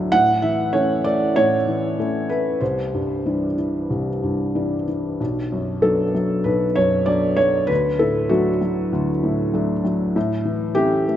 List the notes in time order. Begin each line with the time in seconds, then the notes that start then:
Already playing: D2 A2 F#3 A3 D4 F#4
0.12 A2 F#5
0.42 E3 E5
0.73 E3 A3 C#4 C#5
1.04 A3 D5
1.36 A2 C#5
1.68 E3
1.99 E3 A3 C#4
2.29 A3 B4
2.61 C2 C5
2.94 G2
3.26 E3 G3 D4
3.58 E3
3.90 C2
4.23 G2
4.55 E3 G3 D4
4.88 E3
5.20 B1
5.52 F#2
5.82 F#3 B3 D4 A4
6.15 F#3
6.44 B1 B4
6.76 F#2 C#5
7.06 F#3 B3 D4 D5
7.37 F#3 C#5
7.67 D2 B4
7.99 A2 A4
8.29 F#3 A3 D4 F#4
8.61 F#3
8.93 D2
9.23 A2
9.54 F#3 A3 D4
9.85 F#3
10.16 A2
10.45 E3
10.75 E3 A3 C#4 G4
11.08 A3